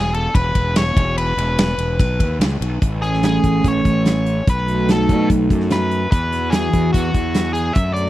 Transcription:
0.00 0.26 E1 loud
0.00 0.15 E3 loud
0.00 0.14 B3 loud
0.00 0.14 C#4 medium
0.00 0.14 G#4 medium
0.14 0.35 E3 medium
0.14 0.35 B3 medium
0.14 0.35 C#4 medium
0.14 0.36 G#4 loud
0.14 0.34 A4 medium
0.14 ride medium
0.34 0.54 E1 medium
0.34 0.55 E3 medium
0.34 0.56 C#4 medium
0.34 0.57 G#4 medium
0.34 0.76 B4 medium
0.34 kick loud
0.34 ride medium
0.55 0.92 E1 medium
0.55 0.76 E3 loud
0.55 0.76 B3 loud
0.55 0.76 C#4 loud
0.55 0.77 G#4 loud
0.55 kick medium
0.55 ride medium
0.76 0.96 E3 medium
0.76 0.96 B3 loud
0.76 0.96 C#4 loud
0.76 1.17 C#5 medium
0.76 snare loud
0.76 ride loud
0.96 1.34 E1 medium
0.96 1.16 E3 loud
0.96 1.16 B3 loud
0.96 1.17 G#4 medium
0.96 kick loud
0.96 ride medium
1.17 1.38 E3 loud
1.17 1.38 B3 loud
1.17 1.38 E4 loud
1.17 1.39 G#4 loud
1.17 2.37 B4 medium
1.17 ride loud
1.37 1.75 E1 medium
1.37 1.58 E3 medium
1.37 1.58 B3 medium
1.37 1.59 E4 medium
1.37 1.59 G#4 medium
1.37 ride medium
1.58 1.78 E3 medium
1.58 1.79 G#4 loud
1.58 snare loud
1.58 ride loud
1.78 1.97 E1 medium
1.78 1.98 E3 medium
1.78 1.99 B3 medium
1.78 1.99 E4 medium
1.78 1.99 G#4 loud
1.78 ride medium
1.99 2.18 B1 medium
1.99 2.20 E3 medium
1.99 2.21 E4 medium
1.99 2.21 G#4 medium
1.99 kick loud
1.99 ride loud
2.19 2.39 D#2 medium
2.19 2.40 E3 loud
2.19 2.41 E4 loud
2.19 2.42 G#4 loud
2.19 kick medium
2.19 ride medium
2.39 2.59 C#2 medium
2.39 2.62 E4 medium
2.39 2.62 G#4 medium
2.39 snare loud
2.39 ride medium
2.61 2.80 B1 medium
2.61 2.80 E3 medium
2.61 2.82 B3 medium
2.61 2.82 E4 medium
2.61 2.82 G#4 medium
2.61 ride medium
2.81 3.38 A1 medium
2.81 4.47 E3 medium
2.81 4.48 A3 medium
2.81 4.48 C#4 medium
2.81 4.48 G#4 medium
2.81 kick medium
2.81 closed hi-hat medium
3.02 3.24 G#4 medium
3.02 closed hi-hat soft
3.14 snare soft
3.23 3.67 G#4 medium
3.23 snare loud
3.23 closed hi-hat medium
3.44 3.62 A1 medium
3.44 kick medium
3.44 closed hi-hat medium
3.64 3.83 A1 medium
3.64 4.49 C#5 medium
3.64 kick medium
3.64 closed hi-hat medium
3.85 4.41 A1 medium
3.85 kick medium
3.85 closed hi-hat medium
4.05 snare medium
4.05 closed hi-hat medium
4.26 closed hi-hat medium
4.47 5.11 B1 medium
4.47 6.12 F#3 medium
4.47 6.13 A3 medium
4.47 6.13 D#4 medium
4.47 6.15 F#4 medium
4.47 4.91 B4 medium
4.47 kick loud
4.47 closed hi-hat medium
4.68 closed hi-hat medium
4.89 5.28 A4 medium
4.89 snare medium
4.89 closed hi-hat medium
5.09 5.28 B2 medium
5.09 kick medium
5.09 closed hi-hat medium
5.30 5.48 B1 medium
5.30 kick medium
5.30 closed hi-hat medium
5.50 6.06 F#2 medium
5.50 kick medium
5.50 closed hi-hat medium
5.60 snare soft
5.70 6.10 B4 medium
5.70 snare medium
5.70 closed hi-hat medium
5.91 closed hi-hat medium
6.11 6.67 E2 medium
6.11 7.77 E3 medium
6.11 7.77 B3 medium
6.11 7.78 E4 medium
6.11 6.54 B4 medium
6.11 kick loud
6.11 closed hi-hat medium
6.15 7.79 F#4 medium
6.33 closed hi-hat medium
6.50 6.90 G#4 medium
6.50 snare loud
6.50 closed hi-hat medium
6.73 6.92 E2 medium
6.73 kick medium
6.73 closed hi-hat medium
6.93 7.13 E2 medium
6.93 7.52 F#4 medium
6.93 kick medium
6.93 closed hi-hat medium
7.14 7.70 E2 medium
7.14 kick medium
7.14 closed hi-hat medium
7.35 snare medium
7.35 closed hi-hat medium
7.53 7.76 G#4 medium
7.53 closed hi-hat medium
7.73 8.10 F#2 loud
7.73 8.10 A3 medium
7.73 7.93 E5 medium
7.73 kick loud
7.73 closed hi-hat medium
7.79 8.10 D4 medium
7.79 8.10 F#4 medium
7.93 8.10 D5 medium
7.93 closed hi-hat medium

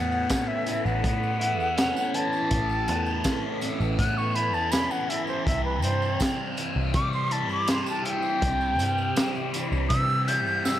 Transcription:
0.00 0.25 E2 medium
0.00 1.41 A2 medium
0.00 1.02 B3 medium
0.00 5.44 C#4 medium
0.00 10.79 E4 medium
0.00 5.43 A4 medium
0.00 5.43 B4 medium
0.00 0.49 F#5 loud
0.12 tambourine soft
0.30 1.75 C#4 medium
0.30 kick medium
0.30 snare loud
0.30 closed hi-hat medium
0.30 tambourine loud
0.48 0.86 E5 medium
0.66 2.13 E3 medium
0.66 closed hi-hat medium
0.66 tambourine medium
0.85 1.02 A1 medium
0.85 2.16 F#5 medium
0.85 tambourine soft
1.04 1.59 A2 medium
1.04 2.86 B3 medium
1.04 kick loud
1.04 closed hi-hat medium
1.04 tambourine soft
1.23 tambourine soft
1.39 4.35 E4 medium
1.39 closed hi-hat medium
1.59 1.91 E2 medium
1.59 tambourine soft
1.77 3.23 C#4 medium
1.77 snare loud
1.77 closed hi-hat medium
1.77 tambourine loud
1.96 tambourine medium
2.14 3.61 E3 medium
2.14 3.58 A5 medium
2.14 closed hi-hat medium
2.33 tambourine soft
2.50 2.89 A1 medium
2.50 4.35 A2 medium
2.50 kick loud
2.50 closed hi-hat loud
2.69 tambourine soft
2.87 3.21 E2 medium
2.87 3.97 B3 medium
2.87 closed hi-hat medium
2.87 tambourine medium
3.06 tambourine soft
3.24 4.71 C#4 medium
3.24 kick medium
3.24 snare loud
3.24 closed hi-hat medium
3.24 tambourine loud
3.61 5.09 E3 medium
3.61 snare soft
3.61 closed hi-hat medium
3.61 tambourine medium
3.80 3.97 A1 medium
3.80 tambourine soft
3.99 4.54 A2 loud
3.99 5.47 B3 medium
3.99 4.19 F#6 loud
3.99 kick loud
3.99 closed hi-hat loud
3.99 tambourine soft
4.17 4.37 C#6 medium
4.17 tambourine soft
4.35 7.30 E4 medium
4.35 4.56 B5 loud
4.35 closed hi-hat medium
4.54 4.86 E2 loud
4.54 4.73 A5 medium
4.54 tambourine soft
4.71 5.47 C#4 medium
4.71 4.92 B5 medium
4.71 snare loud
4.71 closed hi-hat medium
4.71 tambourine loud
4.91 5.11 F#5 medium
4.91 tambourine medium
5.09 6.57 E3 medium
5.09 5.27 E5 medium
5.09 closed hi-hat medium
5.27 5.45 C5 medium
5.27 tambourine soft
5.45 5.84 C2 medium
5.45 7.31 C3 medium
5.45 10.79 C4 medium
5.45 10.79 G4 medium
5.45 10.79 C5 medium
5.45 5.64 E5 loud
5.45 kick loud
5.45 closed hi-hat medium
5.65 5.82 B4 medium
5.82 6.16 G2 medium
5.82 6.92 G3 medium
5.82 6.19 C5 medium
5.82 closed hi-hat medium
5.82 tambourine medium
6.02 tambourine soft
6.19 7.66 C4 medium
6.19 kick medium
6.19 snare loud
6.19 closed hi-hat medium
6.19 tambourine loud
6.57 8.03 E3 medium
6.57 closed hi-hat medium
6.57 tambourine medium
6.76 6.92 C2 medium
6.93 7.48 C3 medium
6.93 8.77 G3 medium
6.93 7.12 D6 loud
6.93 kick loud
6.93 closed hi-hat medium
6.93 tambourine soft
7.13 7.33 C6 loud
7.13 tambourine soft
7.31 9.16 E4 medium
7.31 7.49 A5 medium
7.31 closed hi-hat medium
7.48 7.81 G2 loud
7.48 7.68 D6 loud
7.48 tambourine soft
7.67 9.15 C4 medium
7.67 7.87 C6 medium
7.67 snare loud
7.67 closed hi-hat medium
7.67 tambourine loud
7.86 8.05 A5 medium
7.86 tambourine medium
8.04 9.52 E3 medium
8.04 9.50 G5 loud
8.04 closed hi-hat medium
8.22 tambourine soft
8.41 8.80 C2 medium
8.41 10.26 C3 medium
8.41 kick loud
8.41 closed hi-hat loud
8.41 tambourine soft
8.61 tambourine soft
8.78 9.12 G2 medium
8.78 9.88 G3 medium
8.78 closed hi-hat medium
8.78 tambourine medium
8.98 tambourine soft
9.16 10.62 C4 medium
9.16 snare loud
9.16 closed hi-hat medium
9.16 tambourine loud
9.35 tambourine soft
9.53 10.79 E3 medium
9.53 closed hi-hat medium
9.53 tambourine medium
9.72 9.88 C2 medium
9.72 tambourine soft
9.89 10.46 C3 medium
9.89 10.79 G3 medium
9.89 10.29 E6 loud
9.89 kick loud
9.89 closed hi-hat loud
9.89 tambourine soft
10.10 tambourine soft
10.26 10.79 E4 medium
10.26 10.67 G6 loud
10.26 closed hi-hat medium
10.26 tambourine medium
10.46 10.78 G2 loud
10.46 tambourine soft
10.63 10.79 C4 medium
10.63 10.79 E6 loud
10.63 snare medium
10.63 tambourine loud

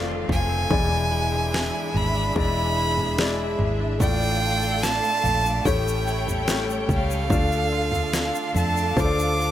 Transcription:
0.00 0.25 F1 loud
0.00 0.69 F2 medium
0.00 0.67 F3 medium
0.00 0.27 A3 medium
0.00 0.73 A3 medium
0.00 0.48 C4 medium
0.00 0.67 C4 medium
0.00 0.72 F4 medium
0.00 0.67 A4 medium
0.00 0.72 D5 medium
0.00 0.67 F5 medium
0.00 downlifter medium
0.08 0.78 F4 medium
0.28 0.67 F1 medium
0.28 0.78 A3 medium
0.28 kick medium
0.28 floor tom medium
0.32 1.99 G#5 loud
0.49 0.78 C4 medium
0.70 1.70 E1 medium
0.70 2.34 E2 medium
0.70 3.97 E3 medium
0.70 1.91 E3 medium
0.70 2.28 G#3 medium
0.70 3.97 D4 medium
0.70 2.28 E4 medium
0.70 3.97 G#4 medium
0.70 2.28 D5 medium
0.70 3.97 E5 medium
0.70 kick loud
0.70 floor tom loud
0.91 1.53 D4 medium
1.11 1.72 E4 medium
1.32 1.93 G#3 medium
1.53 2.15 D4 medium
1.53 snare loud
1.73 2.76 E4 medium
1.94 2.33 G#1 medium
1.94 2.97 G#3 medium
1.94 2.37 B5 loud
1.94 floor tom medium
2.15 2.56 D4 medium
2.35 3.55 E1 loud
2.35 4.00 E2 medium
2.35 3.14 G#3 medium
2.35 3.14 E4 medium
2.35 3.15 D5 medium
2.35 3.56 B5 loud
2.35 kick medium
2.35 floor tom medium
2.56 3.18 D4 medium
2.77 3.38 E4 medium
2.98 3.58 G#3 medium
2.98 floor tom medium
3.18 3.96 G#3 medium
3.18 3.79 D4 medium
3.18 3.97 E4 medium
3.18 3.97 D5 medium
3.18 snare loud
3.39 4.09 E4 medium
3.59 3.98 G#1 medium
3.59 4.09 G#3 medium
3.59 floor tom medium
3.80 4.09 D4 medium
3.99 4.99 A1 loud
3.99 5.20 A2 medium
3.99 5.64 A2 medium
3.99 7.27 A3 medium
3.99 5.57 A3 medium
3.99 5.57 F4 medium
3.99 5.64 A4 medium
3.99 5.63 D5 medium
3.99 5.58 D5 medium
3.99 5.63 F5 medium
3.99 4.84 G5 loud
3.99 kick loud
3.99 floor tom loud
3.99 shaker medium
4.21 4.82 D4 medium
4.21 shaker soft
4.42 5.02 F4 medium
4.62 5.24 A3 medium
4.62 shaker soft
4.83 5.44 D4 medium
4.83 5.67 A5 loud
4.83 snare loud
4.83 shaker medium
5.03 5.73 F4 medium
5.03 shaker medium
5.24 5.62 A#1 medium
5.24 6.27 A3 medium
5.24 floor tom medium
5.24 shaker soft
5.45 5.74 D4 medium
5.45 shaker soft
5.64 6.85 A1 medium
5.64 7.39 A2 medium
5.64 6.85 A2 medium
5.64 6.44 A3 medium
5.64 6.44 G4 medium
5.64 9.51 A4 medium
5.64 7.28 C#5 medium
5.64 6.44 C#5 medium
5.64 7.28 G5 medium
5.64 6.48 G5 medium
5.64 kick medium
5.64 floor tom medium
5.64 shaker medium
5.86 6.47 C#4 medium
5.86 shaker soft
6.07 6.69 E4 medium
6.07 shaker soft
6.27 6.89 G3 medium
6.27 floor tom medium
6.27 shaker soft
6.48 7.26 A3 medium
6.48 7.09 C#4 medium
6.48 7.27 G4 medium
6.48 7.27 C#5 medium
6.48 snare loud
6.48 shaker medium
6.70 shaker soft
6.89 7.27 C#2 medium
6.89 7.39 G3 medium
6.89 kick medium
6.89 floor tom medium
6.89 shaker soft
6.93 8.53 F5 loud
7.10 7.39 C#4 medium
7.10 shaker soft
7.28 8.30 D2 loud
7.28 9.51 D3 medium
7.28 8.96 D3 medium
7.28 8.51 D3 medium
7.28 8.88 A3 medium
7.28 9.51 D4 medium
7.28 8.89 F4 medium
7.28 8.89 D5 medium
7.28 9.51 F5 medium
7.28 kick loud
7.28 floor tom loud
7.28 shaker medium
7.52 8.12 D4 medium
7.52 shaker soft
7.72 8.34 F4 medium
7.92 8.55 A3 medium
7.92 floor tom medium
7.92 shaker soft
8.13 8.75 D4 medium
8.13 snare loud
8.13 shaker medium
8.35 9.39 F4 medium
8.35 shaker soft
8.55 8.94 F2 medium
8.55 9.51 A3 medium
8.55 9.01 A5 medium
8.55 floor tom medium
8.55 shaker soft
8.76 9.17 D4 medium
8.76 shaker soft
8.96 9.51 D2 medium
8.96 9.51 D3 medium
8.96 9.51 A3 medium
8.96 9.51 F4 medium
8.96 9.04 C5 medium
8.96 9.51 D6 medium
8.96 kick medium
8.96 floor tom medium
8.96 shaker medium
9.04 9.51 D5 medium
9.19 9.51 D4 medium
9.19 shaker medium
9.40 9.51 F4 medium
9.40 shaker soft

